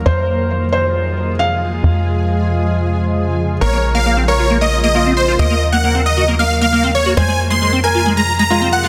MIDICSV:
0, 0, Header, 1, 7, 480
1, 0, Start_track
1, 0, Tempo, 444444
1, 64, Time_signature, 4, 2, 24, 8
1, 9594, End_track
2, 0, Start_track
2, 0, Title_t, "Synth pluck"
2, 0, Program_c, 0, 84
2, 3904, Note_on_c, 0, 85, 88
2, 4140, Note_off_c, 0, 85, 0
2, 4264, Note_on_c, 0, 89, 90
2, 4500, Note_off_c, 0, 89, 0
2, 4624, Note_on_c, 0, 85, 89
2, 4860, Note_off_c, 0, 85, 0
2, 4981, Note_on_c, 0, 87, 77
2, 5140, Note_off_c, 0, 87, 0
2, 5223, Note_on_c, 0, 87, 87
2, 5460, Note_off_c, 0, 87, 0
2, 5581, Note_on_c, 0, 84, 86
2, 5740, Note_off_c, 0, 84, 0
2, 5823, Note_on_c, 0, 87, 91
2, 6060, Note_off_c, 0, 87, 0
2, 6183, Note_on_c, 0, 90, 93
2, 6419, Note_off_c, 0, 90, 0
2, 6545, Note_on_c, 0, 87, 89
2, 6781, Note_off_c, 0, 87, 0
2, 6903, Note_on_c, 0, 89, 84
2, 7061, Note_off_c, 0, 89, 0
2, 7144, Note_on_c, 0, 89, 87
2, 7380, Note_off_c, 0, 89, 0
2, 7505, Note_on_c, 0, 85, 78
2, 7662, Note_off_c, 0, 85, 0
2, 7745, Note_on_c, 0, 92, 97
2, 7980, Note_off_c, 0, 92, 0
2, 8106, Note_on_c, 0, 96, 86
2, 8341, Note_off_c, 0, 96, 0
2, 8465, Note_on_c, 0, 92, 92
2, 8700, Note_off_c, 0, 92, 0
2, 8825, Note_on_c, 0, 94, 77
2, 8982, Note_off_c, 0, 94, 0
2, 9064, Note_on_c, 0, 94, 86
2, 9300, Note_off_c, 0, 94, 0
2, 9423, Note_on_c, 0, 90, 83
2, 9581, Note_off_c, 0, 90, 0
2, 9594, End_track
3, 0, Start_track
3, 0, Title_t, "Supersaw synth"
3, 0, Program_c, 1, 81
3, 3904, Note_on_c, 1, 73, 94
3, 4140, Note_off_c, 1, 73, 0
3, 4263, Note_on_c, 1, 77, 91
3, 4499, Note_off_c, 1, 77, 0
3, 4622, Note_on_c, 1, 73, 83
3, 4859, Note_off_c, 1, 73, 0
3, 4983, Note_on_c, 1, 75, 83
3, 5141, Note_off_c, 1, 75, 0
3, 5223, Note_on_c, 1, 75, 90
3, 5459, Note_off_c, 1, 75, 0
3, 5583, Note_on_c, 1, 72, 89
3, 5741, Note_off_c, 1, 72, 0
3, 5823, Note_on_c, 1, 75, 95
3, 6059, Note_off_c, 1, 75, 0
3, 6182, Note_on_c, 1, 78, 90
3, 6419, Note_off_c, 1, 78, 0
3, 6543, Note_on_c, 1, 75, 87
3, 6779, Note_off_c, 1, 75, 0
3, 6904, Note_on_c, 1, 77, 88
3, 7061, Note_off_c, 1, 77, 0
3, 7144, Note_on_c, 1, 77, 89
3, 7380, Note_off_c, 1, 77, 0
3, 7503, Note_on_c, 1, 73, 88
3, 7661, Note_off_c, 1, 73, 0
3, 7744, Note_on_c, 1, 80, 97
3, 7980, Note_off_c, 1, 80, 0
3, 8103, Note_on_c, 1, 84, 93
3, 8339, Note_off_c, 1, 84, 0
3, 8464, Note_on_c, 1, 80, 90
3, 8700, Note_off_c, 1, 80, 0
3, 8825, Note_on_c, 1, 82, 88
3, 8982, Note_off_c, 1, 82, 0
3, 9064, Note_on_c, 1, 82, 93
3, 9300, Note_off_c, 1, 82, 0
3, 9423, Note_on_c, 1, 78, 89
3, 9581, Note_off_c, 1, 78, 0
3, 9594, End_track
4, 0, Start_track
4, 0, Title_t, "Felt piano"
4, 0, Program_c, 2, 0
4, 62, Note_on_c, 2, 72, 89
4, 687, Note_off_c, 2, 72, 0
4, 782, Note_on_c, 2, 72, 77
4, 1407, Note_off_c, 2, 72, 0
4, 1504, Note_on_c, 2, 77, 84
4, 3808, Note_off_c, 2, 77, 0
4, 3901, Note_on_c, 2, 70, 91
4, 4527, Note_off_c, 2, 70, 0
4, 4623, Note_on_c, 2, 70, 80
4, 5248, Note_off_c, 2, 70, 0
4, 5344, Note_on_c, 2, 65, 81
4, 7648, Note_off_c, 2, 65, 0
4, 7745, Note_on_c, 2, 72, 89
4, 8369, Note_off_c, 2, 72, 0
4, 8464, Note_on_c, 2, 70, 80
4, 9088, Note_off_c, 2, 70, 0
4, 9184, Note_on_c, 2, 65, 89
4, 9594, Note_off_c, 2, 65, 0
4, 9594, End_track
5, 0, Start_track
5, 0, Title_t, "Acid bass"
5, 0, Program_c, 3, 38
5, 3903, Note_on_c, 3, 58, 74
5, 3981, Note_off_c, 3, 58, 0
5, 4024, Note_on_c, 3, 58, 75
5, 4070, Note_off_c, 3, 58, 0
5, 4263, Note_on_c, 3, 58, 96
5, 4310, Note_off_c, 3, 58, 0
5, 4384, Note_on_c, 3, 58, 75
5, 4498, Note_off_c, 3, 58, 0
5, 4503, Note_on_c, 3, 60, 96
5, 4581, Note_off_c, 3, 60, 0
5, 4743, Note_on_c, 3, 65, 68
5, 4821, Note_off_c, 3, 65, 0
5, 4862, Note_on_c, 3, 58, 76
5, 4940, Note_off_c, 3, 58, 0
5, 4982, Note_on_c, 3, 58, 74
5, 5030, Note_off_c, 3, 58, 0
5, 5223, Note_on_c, 3, 58, 95
5, 5270, Note_off_c, 3, 58, 0
5, 5343, Note_on_c, 3, 58, 77
5, 5458, Note_off_c, 3, 58, 0
5, 5463, Note_on_c, 3, 60, 94
5, 5541, Note_off_c, 3, 60, 0
5, 5703, Note_on_c, 3, 65, 67
5, 5781, Note_off_c, 3, 65, 0
5, 5823, Note_on_c, 3, 58, 79
5, 5901, Note_off_c, 3, 58, 0
5, 5944, Note_on_c, 3, 58, 74
5, 5990, Note_off_c, 3, 58, 0
5, 6184, Note_on_c, 3, 58, 102
5, 6231, Note_off_c, 3, 58, 0
5, 6304, Note_on_c, 3, 58, 75
5, 6418, Note_off_c, 3, 58, 0
5, 6424, Note_on_c, 3, 60, 97
5, 6501, Note_off_c, 3, 60, 0
5, 6663, Note_on_c, 3, 66, 68
5, 6741, Note_off_c, 3, 66, 0
5, 6783, Note_on_c, 3, 58, 78
5, 6861, Note_off_c, 3, 58, 0
5, 6904, Note_on_c, 3, 58, 74
5, 6950, Note_off_c, 3, 58, 0
5, 7144, Note_on_c, 3, 58, 95
5, 7190, Note_off_c, 3, 58, 0
5, 7264, Note_on_c, 3, 58, 77
5, 7378, Note_off_c, 3, 58, 0
5, 7384, Note_on_c, 3, 60, 95
5, 7461, Note_off_c, 3, 60, 0
5, 7624, Note_on_c, 3, 66, 69
5, 7701, Note_off_c, 3, 66, 0
5, 7743, Note_on_c, 3, 56, 79
5, 7821, Note_off_c, 3, 56, 0
5, 7864, Note_on_c, 3, 56, 76
5, 7910, Note_off_c, 3, 56, 0
5, 8104, Note_on_c, 3, 56, 99
5, 8150, Note_off_c, 3, 56, 0
5, 8225, Note_on_c, 3, 56, 77
5, 8338, Note_off_c, 3, 56, 0
5, 8343, Note_on_c, 3, 60, 101
5, 8421, Note_off_c, 3, 60, 0
5, 8584, Note_on_c, 3, 65, 68
5, 8661, Note_off_c, 3, 65, 0
5, 8703, Note_on_c, 3, 56, 77
5, 8781, Note_off_c, 3, 56, 0
5, 8824, Note_on_c, 3, 56, 71
5, 8870, Note_off_c, 3, 56, 0
5, 9063, Note_on_c, 3, 56, 102
5, 9110, Note_off_c, 3, 56, 0
5, 9184, Note_on_c, 3, 56, 78
5, 9298, Note_off_c, 3, 56, 0
5, 9303, Note_on_c, 3, 60, 97
5, 9381, Note_off_c, 3, 60, 0
5, 9542, Note_on_c, 3, 65, 72
5, 9594, Note_off_c, 3, 65, 0
5, 9594, End_track
6, 0, Start_track
6, 0, Title_t, "Ambient pad"
6, 0, Program_c, 4, 92
6, 64, Note_on_c, 4, 48, 79
6, 64, Note_on_c, 4, 53, 74
6, 64, Note_on_c, 4, 65, 71
6, 65, Note_on_c, 4, 56, 74
6, 65, Note_on_c, 4, 68, 89
6, 1965, Note_off_c, 4, 48, 0
6, 1965, Note_off_c, 4, 65, 0
6, 1984, Note_on_c, 4, 49, 75
6, 1984, Note_on_c, 4, 65, 73
6, 3866, Note_off_c, 4, 56, 0
6, 3866, Note_off_c, 4, 68, 0
6, 3885, Note_off_c, 4, 65, 0
6, 3902, Note_on_c, 4, 58, 76
6, 3902, Note_on_c, 4, 70, 86
6, 3904, Note_on_c, 4, 65, 71
6, 5781, Note_off_c, 4, 53, 0
6, 5786, Note_off_c, 4, 49, 0
6, 5805, Note_off_c, 4, 65, 0
6, 5824, Note_on_c, 4, 51, 80
6, 5824, Note_on_c, 4, 54, 73
6, 7705, Note_off_c, 4, 58, 0
6, 7705, Note_off_c, 4, 70, 0
6, 7725, Note_off_c, 4, 51, 0
6, 7725, Note_off_c, 4, 54, 0
6, 7744, Note_on_c, 4, 65, 73
6, 7745, Note_on_c, 4, 53, 73
6, 7745, Note_on_c, 4, 56, 76
6, 7745, Note_on_c, 4, 68, 90
6, 7746, Note_on_c, 4, 48, 83
6, 9594, Note_off_c, 4, 48, 0
6, 9594, Note_off_c, 4, 53, 0
6, 9594, Note_off_c, 4, 56, 0
6, 9594, Note_off_c, 4, 65, 0
6, 9594, Note_off_c, 4, 68, 0
6, 9594, End_track
7, 0, Start_track
7, 0, Title_t, "Analog synth bass"
7, 0, Program_c, 5, 38
7, 63, Note_on_c, 5, 41, 79
7, 1959, Note_off_c, 5, 41, 0
7, 1982, Note_on_c, 5, 41, 83
7, 3879, Note_off_c, 5, 41, 0
7, 3903, Note_on_c, 5, 34, 85
7, 5799, Note_off_c, 5, 34, 0
7, 5823, Note_on_c, 5, 39, 81
7, 7720, Note_off_c, 5, 39, 0
7, 7744, Note_on_c, 5, 41, 81
7, 9594, Note_off_c, 5, 41, 0
7, 9594, End_track
0, 0, End_of_file